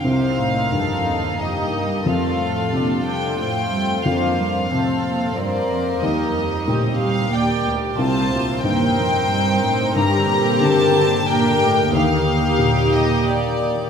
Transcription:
<<
  \new Staff \with { instrumentName = "Violin section" } { \time 3/4 \key c \dorian \tempo 4 = 91 f''2 ees''4 | f''4. g''8 g''4 | f''2 d''4 | ees''4. f''8 g''8 r8 |
a''4 g''2 | bes''4 a''4 g''4 | f''4. ees''8 d''4 | }
  \new Staff \with { instrumentName = "Violin section" } { \time 3/4 \key c \dorian << { c''4 a'4 g'4 | a'2 c''4 | c''4 c''4 c''4 | g'4 g'2 |
c''4 c''2 | bes'2 bes'4 | g'2. | } \\ { ees'2. | f'4 f'2~ | f'4 a'4 bes'4~ | bes'4 g'4 g'4 |
f'4 ees'4 ees'4 | g'2 g'4 | g'2. | } >> }
  \new Staff \with { instrumentName = "Harp" } { \time 3/4 \key c \dorian \tuplet 3/2 { c8 g8 bes8 ees'8 c''8 ees'8 bes8 g8 bes8 } | \tuplet 3/2 { f8 a8 f'8 c''8 a'8 c''8 f'8 a8 f'8 } | \tuplet 3/2 { f8 c'8 f'8 c''4 c''8 f'4 f'8 } | \tuplet 3/2 { g8 ees'4 g'8 ees''8 g'8~ g'8 ees'4 } |
\tuplet 3/2 { c8 g4 g'8 ees''8 g'8~ g'8 g8 c'8 } | \tuplet 3/2 { g,8 d4 g'8 d''8 g'8~ g'8 d8 a8 } | \tuplet 3/2 { ees8 ees'8 bes8 g'8 g''8 g'8 bes8 ees'8 bes8 } | }
  \new Staff \with { instrumentName = "Viola section" } { \time 3/4 \key c \dorian << { c'2 ees'4 | c'4 d'4 c'4 | d'4 c'2 | ees'2 d''4 |
c'4 c'2~ | c'2 d'4 | ees'2. | } \\ { c'2 bes4 | a4 g4 a4 | bes4 c'4 bes4 | bes4 c'4 bes4~ |
bes4 bes'2 | g4 bes4 bes'4 | bes2. | } >> }
  \new Staff \with { instrumentName = "Cello section" } { \clef bass \time 3/4 \key c \dorian c8 a,8 f,8 ees,8 f,8 g,8 | f,8 a,8 bes,8 c8 a,8 g,8 | f,8 g,8 a,8 bes,8 g,8 f,8 | ees,8 f,8 a,8 g,8 ees,8 d,8 |
c,8 d,8 ees,8 f,8 g,8 a,8 | g,8 bes,8 c8 d8 bes,8 a,8 | ees,2. | }
  \new Staff \with { instrumentName = "Felt piano" } { \clef bass \time 3/4 \key c \dorian c,8 r8 g,4 r4 | f,4 c4. r8 | f,8 r8 c4 r4 | ees,8 r8 bes,4. r8 |
c,8 r8 g,8 r4. | g,4 d2 | ees,4 bes,2 | }
>>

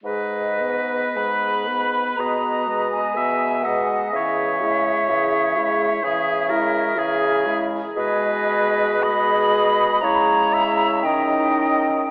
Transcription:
<<
  \new Staff \with { instrumentName = "Flute" } { \time 4/4 \key gis \minor \tempo 4 = 60 dis''4 b''4 ais''8. gis''8. fis''8 | e''2.~ e''8. r16 | dis''4 b''4 ais''4 g''4 | }
  \new Staff \with { instrumentName = "Oboe" } { \time 4/4 \key gis \minor b'2 dis''4 e''8 dis''8 | cis''2 gis'8 ais'8 gis'8 r8 | b'4 dis''4 cis''8 e''8 dis''4 | }
  \new Staff \with { instrumentName = "Clarinet" } { \time 4/4 \key gis \minor gis'8 b'8 gis'8 b'8 gis'8 b'8 gis'8 b'8 | gis'8 e'8 gis'8 e'8 gis'8 e'8 gis'8 e'8 | gis'4 gis'4 e'4 dis'4 | }
  \new Staff \with { instrumentName = "French horn" } { \clef bass \time 4/4 \key gis \minor gis8 b8 gis8 b8 b8 gis8 b8 gis8 | e8 gis8 e8 gis8 e8 gis8 e8 gis8 | gis4 gis4 gis4 cis'4 | }
  \new Staff \with { instrumentName = "Bassoon" } { \clef bass \time 4/4 \key gis \minor gis,4 gis,4 b,4 b,4 | cis4 cis4 cis4 cis4 | b,2 cis4 dis4 | }
>>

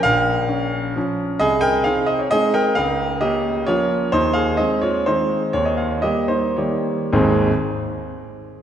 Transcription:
<<
  \new Staff \with { instrumentName = "Grand piano" } { \time 3/4 \key aes \major \tempo 4 = 129 <bes' f''>2 r4 | <aes' ees''>8 <bes' g''>8 <aes' f''>8 ees''16 des''16 <aes' ees''>8 <bes' g''>8 | <bes' f''>4 <g' ees''>4 <f' des''>4 | <ees' c''>8 <aes' f''>8 <aes' ees''>8 <f' des''>8 <ees' c''>4 |
des''16 ees''16 f''16 des''16 <g' ees''>8 <ees' c''>8 <g' des''>4 | <aes,, ees, aes c' ees' aes' c''>8 r2 r8 | }
  \new Staff \with { instrumentName = "Grand piano" } { \time 3/4 \key aes \major bes,,4 des'4 <f des'>4 | c,4 <c' ees'>4 <aes c' ees'>4 | des,4 <bes des'>4 <f bes des'>4 | ees,4 <aes c'>4 <ees aes c'>4 |
ees,4 <g bes>4 <ees g bes>4 | r2. | }
>>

